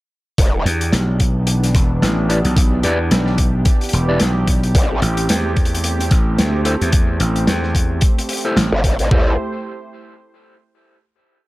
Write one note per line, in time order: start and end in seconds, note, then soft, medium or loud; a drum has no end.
0.38 0.64 E1 loud
0.38 4.71 E3 medium
0.38 4.71 B3 medium
0.38 4.71 D4 medium
0.38 9.07 G4 medium
0.38 kick loud
0.38 closed hi-hat medium
0.65 0.91 E2 loud
0.65 closed hi-hat medium
0.81 closed hi-hat medium
0.93 1.73 B1 loud
0.93 snare loud
0.93 closed hi-hat medium
1.20 kick medium
1.20 closed hi-hat medium
1.47 closed hi-hat loud
1.63 snare soft
1.63 closed hi-hat medium
1.75 2.00 E1 loud
1.75 kick loud
1.75 snare soft
1.75 closed hi-hat medium
2.02 2.42 A1 loud
2.02 snare loud
2.02 closed hi-hat medium
2.29 2.38 E4 medium
2.29 2.38 G4 medium
2.29 2.38 B4 medium
2.29 2.38 D5 medium
2.29 closed hi-hat medium
2.45 2.82 B1 loud
2.45 closed hi-hat soft
2.57 kick loud
2.57 closed hi-hat loud
2.83 3.09 E2 loud
2.83 2.98 E4 medium
2.83 2.98 G4 medium
2.83 2.98 B4 medium
2.83 2.98 D5 loud
2.83 closed hi-hat medium
3.11 3.64 B1 loud
3.11 snare loud
3.11 closed hi-hat medium
3.26 snare soft
3.38 kick medium
3.38 closed hi-hat medium
3.65 kick loud
3.65 closed hi-hat medium
3.81 closed hi-hat soft
3.84 closed hi-hat soft
3.89 closed hi-hat medium
3.93 4.19 E1 loud
3.93 closed hi-hat medium
4.08 4.19 E4 medium
4.08 4.19 G4 medium
4.08 4.19 B4 medium
4.08 4.19 D5 medium
4.20 4.73 B1 loud
4.20 snare loud
4.20 closed hi-hat medium
4.47 kick medium
4.47 closed hi-hat medium
4.63 closed hi-hat soft
4.75 5.00 A1 loud
4.75 9.07 A3 medium
4.75 9.07 C4 medium
4.75 kick loud
4.75 closed hi-hat medium
5.02 5.27 A1 loud
5.02 closed hi-hat medium
5.17 closed hi-hat medium
5.29 6.09 E2 loud
5.29 snare loud
5.29 closed hi-hat loud
5.56 kick medium
5.56 closed hi-hat soft
5.65 closed hi-hat soft
5.75 closed hi-hat medium
5.84 closed hi-hat medium
5.99 snare soft
5.99 closed hi-hat medium
6.11 6.37 A1 medium
6.11 kick loud
6.11 snare soft
6.11 closed hi-hat medium
6.38 6.79 D2 loud
6.38 snare loud
6.38 closed hi-hat medium
6.65 6.74 E4 medium
6.65 6.74 G4 medium
6.65 6.74 A4 medium
6.65 6.74 C5 medium
6.65 closed hi-hat medium
6.81 7.18 E2 loud
6.81 closed hi-hat medium
6.92 kick loud
6.92 closed hi-hat medium
7.20 7.46 A1 loud
7.20 closed hi-hat medium
7.36 closed hi-hat medium
7.47 8.00 E2 loud
7.47 snare loud
7.47 closed hi-hat medium
7.63 snare soft
7.75 kick medium
7.75 closed hi-hat medium
8.01 kick loud
8.01 closed hi-hat medium
8.18 closed hi-hat medium
8.29 closed hi-hat medium
8.33 closed hi-hat medium
8.37 closed hi-hat soft
8.41 8.55 G4 medium
8.41 closed hi-hat soft
8.45 8.55 E4 medium
8.45 8.55 A4 medium
8.45 8.55 C5 medium
8.56 8.70 A1 loud
8.56 snare loud
8.56 closed hi-hat medium
8.72 8.97 G1 loud
8.84 kick medium
8.84 closed hi-hat medium
8.99 9.09 A1 loud
8.99 closed hi-hat medium
9.11 9.37 A1 loud
9.11 9.37 A3 medium
9.11 9.32 E4 medium
9.11 9.37 E4 medium
9.11 9.32 G4 medium
9.11 9.37 G4 medium
9.11 9.32 A4 medium
9.11 9.32 C5 medium
9.11 9.37 C5 medium
9.11 kick loud
9.11 floor tom loud